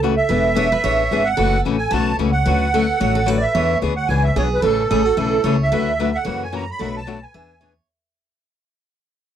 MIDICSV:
0, 0, Header, 1, 5, 480
1, 0, Start_track
1, 0, Tempo, 271248
1, 531, Time_signature, 4, 2, 24, 8
1, 16551, End_track
2, 0, Start_track
2, 0, Title_t, "Accordion"
2, 0, Program_c, 0, 21
2, 300, Note_on_c, 0, 76, 97
2, 2191, Note_on_c, 0, 78, 102
2, 2288, Note_off_c, 0, 76, 0
2, 2851, Note_off_c, 0, 78, 0
2, 3148, Note_on_c, 0, 80, 85
2, 3374, Note_on_c, 0, 81, 95
2, 3386, Note_off_c, 0, 80, 0
2, 3835, Note_off_c, 0, 81, 0
2, 4109, Note_on_c, 0, 78, 97
2, 5964, Note_off_c, 0, 78, 0
2, 5965, Note_on_c, 0, 74, 62
2, 6036, Note_on_c, 0, 76, 88
2, 6091, Note_off_c, 0, 74, 0
2, 6692, Note_off_c, 0, 76, 0
2, 7012, Note_on_c, 0, 78, 90
2, 7215, Note_on_c, 0, 80, 99
2, 7236, Note_off_c, 0, 78, 0
2, 7501, Note_on_c, 0, 76, 81
2, 7511, Note_off_c, 0, 80, 0
2, 7720, Note_off_c, 0, 76, 0
2, 7740, Note_on_c, 0, 73, 71
2, 7859, Note_off_c, 0, 73, 0
2, 8021, Note_on_c, 0, 71, 76
2, 8202, Note_on_c, 0, 69, 83
2, 8219, Note_off_c, 0, 71, 0
2, 9845, Note_off_c, 0, 69, 0
2, 9954, Note_on_c, 0, 76, 78
2, 10890, Note_on_c, 0, 78, 86
2, 10924, Note_off_c, 0, 76, 0
2, 11373, Note_on_c, 0, 80, 85
2, 11378, Note_off_c, 0, 78, 0
2, 11576, Note_off_c, 0, 80, 0
2, 11596, Note_on_c, 0, 82, 75
2, 11862, Note_off_c, 0, 82, 0
2, 11869, Note_on_c, 0, 83, 88
2, 12301, Note_off_c, 0, 83, 0
2, 12336, Note_on_c, 0, 81, 96
2, 12780, Note_on_c, 0, 80, 87
2, 12822, Note_off_c, 0, 81, 0
2, 13684, Note_off_c, 0, 80, 0
2, 16551, End_track
3, 0, Start_track
3, 0, Title_t, "Steel-string acoustic guitar"
3, 0, Program_c, 1, 25
3, 0, Note_on_c, 1, 69, 84
3, 510, Note_on_c, 1, 71, 75
3, 574, Note_off_c, 1, 69, 0
3, 993, Note_off_c, 1, 71, 0
3, 1000, Note_on_c, 1, 73, 94
3, 1268, Note_off_c, 1, 73, 0
3, 1275, Note_on_c, 1, 71, 79
3, 1475, Note_off_c, 1, 71, 0
3, 1482, Note_on_c, 1, 73, 90
3, 2186, Note_off_c, 1, 73, 0
3, 2424, Note_on_c, 1, 69, 81
3, 3367, Note_off_c, 1, 69, 0
3, 3374, Note_on_c, 1, 73, 86
3, 4280, Note_off_c, 1, 73, 0
3, 4345, Note_on_c, 1, 71, 82
3, 4800, Note_off_c, 1, 71, 0
3, 4846, Note_on_c, 1, 69, 83
3, 5315, Note_off_c, 1, 69, 0
3, 5322, Note_on_c, 1, 73, 85
3, 5571, Note_off_c, 1, 73, 0
3, 5578, Note_on_c, 1, 69, 84
3, 5800, Note_off_c, 1, 69, 0
3, 5800, Note_on_c, 1, 71, 91
3, 6270, Note_off_c, 1, 71, 0
3, 6277, Note_on_c, 1, 73, 76
3, 7710, Note_off_c, 1, 73, 0
3, 7718, Note_on_c, 1, 68, 77
3, 8165, Note_off_c, 1, 68, 0
3, 8180, Note_on_c, 1, 69, 78
3, 8675, Note_off_c, 1, 69, 0
3, 8682, Note_on_c, 1, 68, 81
3, 8947, Note_off_c, 1, 68, 0
3, 8947, Note_on_c, 1, 66, 80
3, 9141, Note_off_c, 1, 66, 0
3, 9148, Note_on_c, 1, 64, 68
3, 9615, Note_off_c, 1, 64, 0
3, 9622, Note_on_c, 1, 73, 71
3, 10077, Note_off_c, 1, 73, 0
3, 10118, Note_on_c, 1, 69, 65
3, 11045, Note_off_c, 1, 69, 0
3, 11052, Note_on_c, 1, 73, 77
3, 12012, Note_off_c, 1, 73, 0
3, 12019, Note_on_c, 1, 71, 65
3, 12985, Note_off_c, 1, 71, 0
3, 12992, Note_on_c, 1, 76, 81
3, 13454, Note_off_c, 1, 76, 0
3, 13462, Note_on_c, 1, 73, 71
3, 13920, Note_off_c, 1, 73, 0
3, 16551, End_track
4, 0, Start_track
4, 0, Title_t, "Steel-string acoustic guitar"
4, 0, Program_c, 2, 25
4, 47, Note_on_c, 2, 52, 74
4, 51, Note_on_c, 2, 49, 68
4, 62, Note_on_c, 2, 61, 79
4, 66, Note_on_c, 2, 57, 79
4, 70, Note_on_c, 2, 66, 86
4, 231, Note_off_c, 2, 52, 0
4, 233, Note_off_c, 2, 49, 0
4, 238, Note_off_c, 2, 61, 0
4, 240, Note_off_c, 2, 57, 0
4, 242, Note_off_c, 2, 66, 0
4, 525, Note_on_c, 2, 52, 61
4, 535, Note_on_c, 2, 68, 68
4, 539, Note_on_c, 2, 59, 63
4, 540, Note_on_c, 2, 62, 69
4, 853, Note_off_c, 2, 52, 0
4, 858, Note_off_c, 2, 68, 0
4, 860, Note_off_c, 2, 59, 0
4, 861, Note_off_c, 2, 62, 0
4, 976, Note_on_c, 2, 52, 72
4, 984, Note_on_c, 2, 59, 77
4, 994, Note_on_c, 2, 68, 81
4, 1000, Note_on_c, 2, 62, 87
4, 1174, Note_off_c, 2, 52, 0
4, 1179, Note_off_c, 2, 59, 0
4, 1183, Note_off_c, 2, 68, 0
4, 1187, Note_off_c, 2, 62, 0
4, 1492, Note_on_c, 2, 52, 52
4, 1496, Note_on_c, 2, 59, 61
4, 1502, Note_on_c, 2, 62, 59
4, 1514, Note_on_c, 2, 68, 69
4, 1816, Note_off_c, 2, 52, 0
4, 1818, Note_off_c, 2, 59, 0
4, 1821, Note_off_c, 2, 62, 0
4, 1827, Note_off_c, 2, 68, 0
4, 1971, Note_on_c, 2, 52, 74
4, 1982, Note_on_c, 2, 59, 77
4, 1989, Note_on_c, 2, 62, 83
4, 1992, Note_on_c, 2, 68, 85
4, 2151, Note_off_c, 2, 52, 0
4, 2157, Note_off_c, 2, 59, 0
4, 2160, Note_off_c, 2, 62, 0
4, 2162, Note_off_c, 2, 68, 0
4, 2429, Note_on_c, 2, 49, 57
4, 2435, Note_on_c, 2, 52, 51
4, 2445, Note_on_c, 2, 61, 60
4, 2449, Note_on_c, 2, 57, 59
4, 2450, Note_on_c, 2, 66, 65
4, 2764, Note_off_c, 2, 49, 0
4, 2767, Note_off_c, 2, 52, 0
4, 2772, Note_off_c, 2, 61, 0
4, 2774, Note_off_c, 2, 57, 0
4, 2775, Note_off_c, 2, 66, 0
4, 2922, Note_on_c, 2, 49, 69
4, 2935, Note_on_c, 2, 52, 76
4, 2936, Note_on_c, 2, 57, 77
4, 2940, Note_on_c, 2, 66, 75
4, 2941, Note_on_c, 2, 61, 87
4, 3106, Note_off_c, 2, 49, 0
4, 3113, Note_off_c, 2, 52, 0
4, 3113, Note_off_c, 2, 57, 0
4, 3115, Note_off_c, 2, 66, 0
4, 3116, Note_off_c, 2, 61, 0
4, 3413, Note_on_c, 2, 49, 52
4, 3414, Note_on_c, 2, 52, 54
4, 3419, Note_on_c, 2, 61, 57
4, 3421, Note_on_c, 2, 57, 65
4, 3427, Note_on_c, 2, 66, 75
4, 3735, Note_off_c, 2, 49, 0
4, 3736, Note_off_c, 2, 52, 0
4, 3738, Note_off_c, 2, 61, 0
4, 3739, Note_off_c, 2, 57, 0
4, 3742, Note_off_c, 2, 66, 0
4, 3874, Note_on_c, 2, 52, 82
4, 3879, Note_on_c, 2, 49, 77
4, 3882, Note_on_c, 2, 57, 79
4, 3883, Note_on_c, 2, 61, 74
4, 3893, Note_on_c, 2, 66, 80
4, 4061, Note_off_c, 2, 52, 0
4, 4064, Note_off_c, 2, 49, 0
4, 4065, Note_off_c, 2, 57, 0
4, 4066, Note_off_c, 2, 61, 0
4, 4071, Note_off_c, 2, 66, 0
4, 4362, Note_on_c, 2, 50, 63
4, 4363, Note_on_c, 2, 54, 68
4, 4377, Note_on_c, 2, 57, 60
4, 4377, Note_on_c, 2, 61, 75
4, 4389, Note_on_c, 2, 66, 63
4, 4689, Note_off_c, 2, 50, 0
4, 4690, Note_off_c, 2, 54, 0
4, 4696, Note_off_c, 2, 61, 0
4, 4697, Note_off_c, 2, 57, 0
4, 4703, Note_off_c, 2, 66, 0
4, 4852, Note_on_c, 2, 50, 73
4, 4859, Note_on_c, 2, 57, 91
4, 4860, Note_on_c, 2, 54, 82
4, 4862, Note_on_c, 2, 66, 73
4, 4868, Note_on_c, 2, 61, 72
4, 5029, Note_off_c, 2, 50, 0
4, 5033, Note_off_c, 2, 57, 0
4, 5034, Note_off_c, 2, 54, 0
4, 5035, Note_off_c, 2, 66, 0
4, 5038, Note_off_c, 2, 61, 0
4, 5307, Note_on_c, 2, 50, 56
4, 5313, Note_on_c, 2, 57, 65
4, 5314, Note_on_c, 2, 54, 58
4, 5316, Note_on_c, 2, 61, 62
4, 5323, Note_on_c, 2, 66, 67
4, 5641, Note_off_c, 2, 50, 0
4, 5644, Note_off_c, 2, 54, 0
4, 5644, Note_off_c, 2, 57, 0
4, 5646, Note_off_c, 2, 61, 0
4, 5649, Note_off_c, 2, 66, 0
4, 5768, Note_on_c, 2, 50, 76
4, 5771, Note_on_c, 2, 54, 76
4, 5774, Note_on_c, 2, 57, 77
4, 5778, Note_on_c, 2, 61, 75
4, 5789, Note_on_c, 2, 66, 79
4, 5967, Note_off_c, 2, 50, 0
4, 5969, Note_off_c, 2, 54, 0
4, 5970, Note_off_c, 2, 57, 0
4, 5972, Note_off_c, 2, 61, 0
4, 5978, Note_off_c, 2, 66, 0
4, 6283, Note_on_c, 2, 52, 70
4, 6292, Note_on_c, 2, 59, 66
4, 6292, Note_on_c, 2, 62, 61
4, 6294, Note_on_c, 2, 68, 67
4, 6608, Note_off_c, 2, 52, 0
4, 6613, Note_off_c, 2, 59, 0
4, 6613, Note_off_c, 2, 62, 0
4, 6614, Note_off_c, 2, 68, 0
4, 6753, Note_on_c, 2, 52, 71
4, 6763, Note_on_c, 2, 59, 91
4, 6768, Note_on_c, 2, 62, 75
4, 6781, Note_on_c, 2, 68, 86
4, 6939, Note_off_c, 2, 52, 0
4, 6944, Note_off_c, 2, 59, 0
4, 6946, Note_off_c, 2, 62, 0
4, 6953, Note_off_c, 2, 68, 0
4, 7256, Note_on_c, 2, 59, 63
4, 7263, Note_on_c, 2, 52, 68
4, 7267, Note_on_c, 2, 62, 65
4, 7270, Note_on_c, 2, 68, 69
4, 7575, Note_off_c, 2, 59, 0
4, 7578, Note_off_c, 2, 52, 0
4, 7580, Note_off_c, 2, 62, 0
4, 7581, Note_off_c, 2, 68, 0
4, 7719, Note_on_c, 2, 52, 77
4, 7732, Note_on_c, 2, 59, 85
4, 7740, Note_on_c, 2, 62, 79
4, 7741, Note_on_c, 2, 68, 71
4, 7902, Note_off_c, 2, 52, 0
4, 7908, Note_off_c, 2, 59, 0
4, 7912, Note_off_c, 2, 62, 0
4, 7913, Note_off_c, 2, 68, 0
4, 8191, Note_on_c, 2, 49, 63
4, 8201, Note_on_c, 2, 61, 69
4, 8202, Note_on_c, 2, 52, 63
4, 8202, Note_on_c, 2, 57, 65
4, 8213, Note_on_c, 2, 68, 68
4, 8522, Note_off_c, 2, 49, 0
4, 8527, Note_off_c, 2, 52, 0
4, 8527, Note_off_c, 2, 57, 0
4, 8527, Note_off_c, 2, 61, 0
4, 8533, Note_off_c, 2, 68, 0
4, 8682, Note_on_c, 2, 49, 84
4, 8684, Note_on_c, 2, 52, 80
4, 8698, Note_on_c, 2, 61, 71
4, 8698, Note_on_c, 2, 68, 84
4, 8699, Note_on_c, 2, 57, 79
4, 8863, Note_off_c, 2, 49, 0
4, 8864, Note_off_c, 2, 52, 0
4, 8871, Note_off_c, 2, 61, 0
4, 8871, Note_off_c, 2, 68, 0
4, 8872, Note_off_c, 2, 57, 0
4, 9151, Note_on_c, 2, 49, 53
4, 9156, Note_on_c, 2, 52, 58
4, 9157, Note_on_c, 2, 61, 62
4, 9164, Note_on_c, 2, 57, 62
4, 9170, Note_on_c, 2, 68, 60
4, 9482, Note_off_c, 2, 49, 0
4, 9484, Note_off_c, 2, 52, 0
4, 9485, Note_off_c, 2, 61, 0
4, 9488, Note_off_c, 2, 57, 0
4, 9492, Note_off_c, 2, 68, 0
4, 9639, Note_on_c, 2, 49, 68
4, 9649, Note_on_c, 2, 52, 72
4, 9654, Note_on_c, 2, 57, 70
4, 9658, Note_on_c, 2, 61, 73
4, 9670, Note_on_c, 2, 68, 81
4, 9822, Note_off_c, 2, 49, 0
4, 9826, Note_off_c, 2, 52, 0
4, 9829, Note_off_c, 2, 57, 0
4, 9831, Note_off_c, 2, 61, 0
4, 9837, Note_off_c, 2, 68, 0
4, 10126, Note_on_c, 2, 50, 55
4, 10131, Note_on_c, 2, 54, 50
4, 10135, Note_on_c, 2, 57, 64
4, 10135, Note_on_c, 2, 66, 61
4, 10138, Note_on_c, 2, 71, 67
4, 10141, Note_on_c, 2, 62, 58
4, 10450, Note_off_c, 2, 50, 0
4, 10452, Note_off_c, 2, 54, 0
4, 10454, Note_off_c, 2, 57, 0
4, 10454, Note_off_c, 2, 66, 0
4, 10456, Note_off_c, 2, 71, 0
4, 10457, Note_off_c, 2, 62, 0
4, 10609, Note_on_c, 2, 50, 72
4, 10612, Note_on_c, 2, 62, 76
4, 10616, Note_on_c, 2, 54, 70
4, 10616, Note_on_c, 2, 57, 80
4, 10616, Note_on_c, 2, 66, 78
4, 10623, Note_on_c, 2, 71, 85
4, 10787, Note_off_c, 2, 50, 0
4, 10789, Note_off_c, 2, 62, 0
4, 10790, Note_off_c, 2, 57, 0
4, 10791, Note_off_c, 2, 54, 0
4, 10791, Note_off_c, 2, 66, 0
4, 10794, Note_off_c, 2, 71, 0
4, 11061, Note_on_c, 2, 49, 56
4, 11062, Note_on_c, 2, 52, 57
4, 11066, Note_on_c, 2, 58, 60
4, 11071, Note_on_c, 2, 61, 55
4, 11073, Note_on_c, 2, 66, 59
4, 11398, Note_off_c, 2, 49, 0
4, 11398, Note_off_c, 2, 52, 0
4, 11400, Note_off_c, 2, 58, 0
4, 11403, Note_off_c, 2, 61, 0
4, 11404, Note_off_c, 2, 66, 0
4, 11545, Note_on_c, 2, 58, 75
4, 11551, Note_on_c, 2, 49, 71
4, 11551, Note_on_c, 2, 52, 81
4, 11551, Note_on_c, 2, 61, 86
4, 11556, Note_on_c, 2, 66, 75
4, 11736, Note_off_c, 2, 58, 0
4, 11739, Note_off_c, 2, 49, 0
4, 11739, Note_off_c, 2, 52, 0
4, 11739, Note_off_c, 2, 61, 0
4, 11741, Note_off_c, 2, 66, 0
4, 12034, Note_on_c, 2, 47, 65
4, 12041, Note_on_c, 2, 54, 66
4, 12043, Note_on_c, 2, 57, 53
4, 12050, Note_on_c, 2, 62, 63
4, 12052, Note_on_c, 2, 66, 67
4, 12365, Note_off_c, 2, 47, 0
4, 12369, Note_off_c, 2, 54, 0
4, 12370, Note_off_c, 2, 57, 0
4, 12373, Note_off_c, 2, 62, 0
4, 12374, Note_off_c, 2, 66, 0
4, 12508, Note_on_c, 2, 54, 80
4, 12511, Note_on_c, 2, 47, 73
4, 12515, Note_on_c, 2, 62, 80
4, 12517, Note_on_c, 2, 57, 71
4, 12526, Note_on_c, 2, 66, 80
4, 12698, Note_off_c, 2, 54, 0
4, 12700, Note_off_c, 2, 47, 0
4, 12702, Note_off_c, 2, 62, 0
4, 12703, Note_off_c, 2, 57, 0
4, 12707, Note_off_c, 2, 66, 0
4, 12997, Note_on_c, 2, 52, 60
4, 13008, Note_on_c, 2, 59, 55
4, 13012, Note_on_c, 2, 62, 53
4, 13012, Note_on_c, 2, 68, 58
4, 13328, Note_off_c, 2, 52, 0
4, 13334, Note_off_c, 2, 59, 0
4, 13335, Note_off_c, 2, 68, 0
4, 13336, Note_off_c, 2, 62, 0
4, 13479, Note_on_c, 2, 68, 75
4, 13481, Note_on_c, 2, 52, 66
4, 13482, Note_on_c, 2, 62, 77
4, 13484, Note_on_c, 2, 59, 75
4, 13665, Note_off_c, 2, 68, 0
4, 13666, Note_off_c, 2, 52, 0
4, 13666, Note_off_c, 2, 62, 0
4, 13667, Note_off_c, 2, 59, 0
4, 16551, End_track
5, 0, Start_track
5, 0, Title_t, "Upright bass"
5, 0, Program_c, 3, 32
5, 0, Note_on_c, 3, 37, 67
5, 342, Note_off_c, 3, 37, 0
5, 532, Note_on_c, 3, 28, 89
5, 1298, Note_off_c, 3, 28, 0
5, 1484, Note_on_c, 3, 33, 70
5, 1894, Note_off_c, 3, 33, 0
5, 1969, Note_on_c, 3, 32, 69
5, 2376, Note_off_c, 3, 32, 0
5, 2445, Note_on_c, 3, 30, 74
5, 2829, Note_off_c, 3, 30, 0
5, 2920, Note_on_c, 3, 33, 63
5, 3330, Note_off_c, 3, 33, 0
5, 3393, Note_on_c, 3, 35, 69
5, 3806, Note_off_c, 3, 35, 0
5, 3878, Note_on_c, 3, 37, 70
5, 4288, Note_off_c, 3, 37, 0
5, 4356, Note_on_c, 3, 38, 84
5, 5126, Note_off_c, 3, 38, 0
5, 5322, Note_on_c, 3, 33, 66
5, 6089, Note_off_c, 3, 33, 0
5, 6277, Note_on_c, 3, 40, 90
5, 6663, Note_off_c, 3, 40, 0
5, 6763, Note_on_c, 3, 38, 81
5, 7170, Note_off_c, 3, 38, 0
5, 7236, Note_on_c, 3, 37, 82
5, 7646, Note_off_c, 3, 37, 0
5, 7712, Note_on_c, 3, 35, 80
5, 8123, Note_off_c, 3, 35, 0
5, 8191, Note_on_c, 3, 33, 85
5, 8579, Note_off_c, 3, 33, 0
5, 8682, Note_on_c, 3, 33, 69
5, 9089, Note_off_c, 3, 33, 0
5, 9150, Note_on_c, 3, 35, 72
5, 9563, Note_off_c, 3, 35, 0
5, 9631, Note_on_c, 3, 37, 79
5, 10043, Note_off_c, 3, 37, 0
5, 10125, Note_on_c, 3, 38, 80
5, 10892, Note_off_c, 3, 38, 0
5, 11096, Note_on_c, 3, 42, 76
5, 11859, Note_off_c, 3, 42, 0
5, 12051, Note_on_c, 3, 35, 81
5, 12817, Note_off_c, 3, 35, 0
5, 13000, Note_on_c, 3, 40, 81
5, 13772, Note_off_c, 3, 40, 0
5, 16551, End_track
0, 0, End_of_file